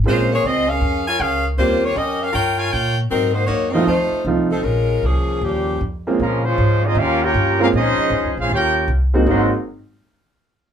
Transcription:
X:1
M:4/4
L:1/8
Q:"Swing" 1/4=156
K:Ab
V:1 name="Trumpet section"
z8 | z8 | z8 | z8 |
[A,DFB] [A,DFc]2 [CFAe] [DGBf] [FBdg]2 [DGBf] | [DAce]3 [DAcf] [FBdg]2 z2 | [Be_gc'] z6 z |]
V:2 name="Saxophone section"
[A,DFc] [B,FAd] [CFAe] [DABf]2 [FBda] [DABf] z | [B,FGc] [B,FGd] [DGBe] [DGBf] [FBdg] [FBda] [FBdg] z | [_G,CEB] [B,E_Gc] [B,EGd] [CGBe] [=A,EFc]2 z [F,CE=A] | [A,DFB]2 [F,B,DA]2 [F,B,DG]2 z2 |
z8 | z8 | z8 |]
V:3 name="Grand piano"
[A,B,CDF] z6 z | [G,B,CDF] z6 z | z3 [F,=A,CEF] z2 [F,A,CEF] z | z6 z [A,B,CDF] |
z6 z [A,B,CDF] | z6 z [A,B,CE_G] | [A,B,CE_G] z6 z |]
V:4 name="Trombone section"
z8 | z8 | z8 | z4 [B,,D,G,]2 z2 |
[D,F,B,] [F,A,D]2 E [B,DF] [B,DG]2 [B,DF] | [F,A,E]3 [A,DF] [B,DG]2 z2 | [A,,E,_G,C] z6 z |]
V:5 name="Upright bass" clef=bass
B,,,2 D,,2 F,,2 D,,2 | E,,2 F,,2 G,,2 B,,2 | A,,2 _G,,2 F,, z C,,2 | B,,,2 C,,2 E,,2 F,,2 |
B,,2 A,,2 E,,2 G,,2 | B,, z (3F,, D,, B,,, E,,2 C,,2 | A,,, z6 z |]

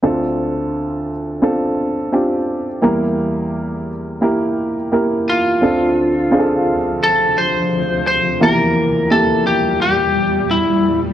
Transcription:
X:1
M:4/4
L:1/16
Q:1/4=86
K:Dm
V:1 name="Lead electric guitar"
z16 | z12 z2 F2- | F8 A2 c4 c2 | B4 A2 G2 G4 E3 z |]
V:2 name="Grand piano"
[CDFA]6 z2 [CDFA]3 z [CDFG]3 z | [B,EGB]6 z2 [B,EGB]3 z [B,EGB]3 z | [CDFA]3 z [CDF^GA]6 z6 | [B,E^FGB]3 z [B,EG]6 z6 |]
V:3 name="Grand piano" clef=bass
[D,,D,]16 | [E,,G,]16 | [D,,D,]16 | [E,,E,]16 |]
V:4 name="Ambient pad" clef=bass
z16 | z16 | [D,,C,F,]16 | [E,,B,,G,]16 |]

